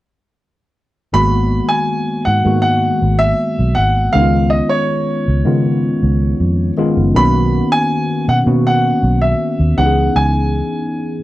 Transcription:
1.13 1.59 G#1 medium
1.13 2.36 D#3 medium
1.13 2.36 G#3 medium
1.13 2.36 A#3 medium
1.13 2.36 B3 medium
1.13 2.37 F#4 medium
1.13 1.72 B5 loud
1.69 2.22 G#5 medium
2.25 2.42 G#2 medium
2.25 2.60 F#5 medium
2.45 2.91 G#2 medium
2.45 3.85 D#3 medium
2.45 3.85 G#3 medium
2.45 3.85 A#3 medium
2.45 3.85 B3 medium
2.45 3.86 F#4 medium
2.62 3.21 F#5 medium
3.02 3.32 G#1 medium
3.19 3.78 E5 loud
3.59 3.74 B1 medium
3.75 4.07 G#1 medium
3.75 4.11 F#5 medium
4.13 4.60 C#2 medium
4.13 5.36 D#3 medium
4.13 5.37 G#3 medium
4.13 5.37 B3 medium
4.13 5.37 C#4 medium
4.13 4.21 D#4 medium
4.13 4.52 F5 medium
4.22 5.40 F4 medium
4.50 4.70 D#5 medium
4.69 6.73 C#5 medium
5.28 5.43 C#2 medium
5.45 5.91 C#3 medium
5.45 6.68 D#3 medium
5.45 6.68 G#3 medium
5.45 6.68 B3 medium
5.45 6.68 C#4 medium
5.45 6.69 F4 medium
6.03 6.33 C#2 medium
6.40 6.70 F2 medium
6.77 7.12 D#3 medium
6.77 7.12 G#3 medium
6.77 7.13 B3 medium
6.77 7.13 C#4 medium
6.77 7.13 F4 medium
6.97 7.12 F#1 medium
7.15 7.60 B1 medium
7.15 8.37 D#3 medium
7.15 8.37 A#3 medium
7.15 8.38 B3 medium
7.15 8.38 C#4 medium
7.15 8.38 F#4 medium
7.15 7.68 B5 loud
7.72 8.24 G#5 loud
8.28 8.43 B2 medium
8.28 8.37 F#5 medium
8.46 8.92 B2 medium
8.46 9.77 D#3 medium
8.46 9.78 A#3 medium
8.46 9.76 B3 medium
8.46 9.76 C#4 medium
8.46 9.79 F#4 medium
8.67 9.18 F#5 medium
9.03 9.33 B1 medium
9.22 9.80 E5 medium
9.60 9.74 D#2 medium
9.77 10.08 C#2 medium
9.77 11.17 E3 medium
9.77 11.17 B3 medium
9.77 11.17 C#4 medium
9.77 11.18 D#4 medium
9.77 9.85 G4 medium
9.77 10.16 F#5 medium
9.85 11.21 G#4 medium
10.16 10.61 C#2 medium
10.16 11.23 G#5 medium

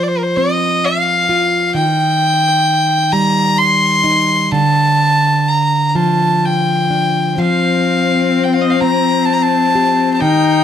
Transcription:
0.00 1.75 F3 medium
0.00 0.09 D5 soft
0.07 0.20 C5 medium
0.18 0.24 A#4 soft
0.23 0.38 C5 medium
0.36 3.87 C4 medium
0.36 0.86 D#5 medium
0.85 1.74 F5 medium
1.29 1.84 F4 soft
1.74 4.51 D#3 medium
1.74 3.13 G5 medium
3.12 4.61 G3 medium
3.12 3.60 A#5 medium
3.58 4.53 C6 medium
4.04 4.61 D#4 soft
4.51 7.38 D3 medium
4.51 5.50 A5 medium
5.48 5.89 A#5 medium
5.89 5.96 A#5 soft
5.95 7.38 F3 soft
5.95 6.47 A5 medium
6.45 7.40 G5 medium
6.90 7.47 D4 soft
7.37 10.21 F3 medium
7.37 10.21 C4 medium
7.37 8.45 F5 medium
8.44 8.55 G5 medium
8.53 8.63 F5 medium
8.61 8.72 D#5 medium
8.71 8.82 F5 medium
8.80 10.31 C4 medium
8.80 9.27 A#5 medium
9.25 9.35 A5 medium
9.33 9.43 A#5 medium
9.42 10.13 A5 medium
9.75 10.64 G4 soft
10.14 10.22 A5 medium
10.20 10.64 D#3 medium
10.20 10.64 D#4 medium
10.20 10.64 G5 medium

